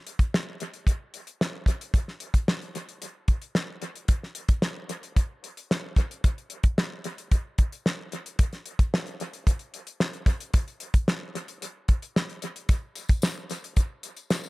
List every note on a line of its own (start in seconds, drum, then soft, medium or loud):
0.07 closed hi-hat medium
0.19 kick medium
0.19 closed hi-hat medium
0.34 snare loud
0.60 closed hi-hat medium
0.74 closed hi-hat soft
0.87 kick medium
0.87 closed hi-hat medium
1.14 closed hi-hat medium
1.27 closed hi-hat soft
1.41 snare medium
1.66 kick medium
1.66 closed hi-hat medium
1.81 closed hi-hat medium
1.94 kick loud
1.94 closed hi-hat medium
2.08 snare soft
2.20 closed hi-hat medium
2.34 kick medium
2.34 closed hi-hat medium
2.48 snare loud
2.62 closed hi-hat soft
2.75 closed hi-hat medium
2.89 closed hi-hat soft
3.02 closed hi-hat medium
3.28 kick medium
3.28 closed hi-hat medium
3.42 closed hi-hat soft
3.55 snare medium
3.82 closed hi-hat medium
3.96 closed hi-hat soft
4.08 kick loud
4.08 closed hi-hat loud
4.23 snare soft
4.35 closed hi-hat medium
4.48 kick medium
4.48 closed hi-hat medium
4.62 snare loud
4.89 closed hi-hat medium
5.03 closed hi-hat soft
5.16 kick medium
5.16 closed hi-hat medium
5.44 closed hi-hat medium
5.57 closed hi-hat soft
5.71 snare loud
5.96 kick medium
5.96 closed hi-hat medium
6.11 closed hi-hat medium
6.24 kick loud
6.24 closed hi-hat loud
6.38 closed hi-hat soft
6.50 closed hi-hat medium
6.63 kick medium
6.63 closed hi-hat medium
6.78 snare loud
7.04 closed hi-hat medium
7.18 closed hi-hat soft
7.31 kick medium
7.31 closed hi-hat medium
7.58 kick medium
7.58 closed hi-hat medium
7.72 closed hi-hat soft
7.86 snare medium
8.12 closed hi-hat medium
8.26 closed hi-hat medium
8.39 kick loud
8.39 closed hi-hat loud
8.53 snare soft
8.53 closed hi-hat soft
8.66 closed hi-hat medium
8.79 kick medium
8.79 closed hi-hat medium
8.94 snare loud
9.07 closed hi-hat soft
9.20 closed hi-hat medium
9.33 closed hi-hat soft
9.47 kick medium
9.47 closed hi-hat medium
9.59 closed hi-hat soft
9.74 closed hi-hat medium
9.87 closed hi-hat medium
10.00 snare medium
10.13 closed hi-hat soft
10.26 kick medium
10.26 closed hi-hat medium
10.40 closed hi-hat medium
10.54 kick loud
10.54 closed hi-hat loud
10.68 closed hi-hat soft
10.80 closed hi-hat medium
10.94 kick medium
10.94 closed hi-hat medium
11.08 snare loud
11.35 closed hi-hat medium
11.48 closed hi-hat soft
11.62 closed hi-hat medium
11.88 kick medium
11.88 closed hi-hat medium
12.02 closed hi-hat soft
12.16 snare loud
12.29 closed hi-hat soft
12.42 closed hi-hat medium
12.56 closed hi-hat medium
12.69 kick loud
12.69 closed hi-hat loud
12.69 tambourine soft
12.96 closed hi-hat medium
12.96 tambourine soft
13.09 kick medium
13.09 closed hi-hat medium
13.09 tambourine soft
13.22 snare loud
13.22 tambourine medium
13.50 closed hi-hat medium
13.50 tambourine soft
13.64 closed hi-hat medium
13.76 kick medium
13.76 closed hi-hat medium
13.76 tambourine soft
14.03 closed hi-hat medium
14.03 tambourine soft
14.16 closed hi-hat soft
14.16 tambourine soft
14.30 snare loud
14.30 tambourine medium
14.44 tambourine soft